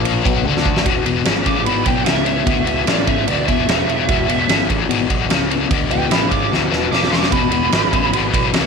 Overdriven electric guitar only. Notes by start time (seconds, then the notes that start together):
Already playing: A#2 F3 A#3
0.24 B2 F#3 B3
0.45 D3 A3 D4
0.86 E2 B2
1.06 E2 B2
1.26 E2 C#3
1.45 E2 C#3
1.66 E2 B2
1.86 E2 B2
2.06 E2 C#3
2.26 E2 C#3
2.46 E2 B2
2.66 E2 B2
2.86 E2 C#3
3.07 E2 C#3
3.27 E2 B2
3.47 E2 B2
3.67 E2 C#3
3.88 E2 C#3
4.09 E2 B2
4.28 E2 B2
4.48 E2 C#3
4.69 E2 C#3
4.89 E2 B2
5.10 E2 B2
5.30 E2 C#3
5.50 E2 C#3
5.71 E2 B2
5.91 E2 B2
6.11 E2 C#3
6.31 E2 C#3
6.51 E2 B2
6.71 E2 B2
6.91 E2 C#3
7.11 E2 C#3
7.32 E2 B2
7.52 E2 B2
7.72 E2 C#3
7.93 E2 C#3
8.13 E2 B2
8.34 E2 B2
8.53 E2 C#3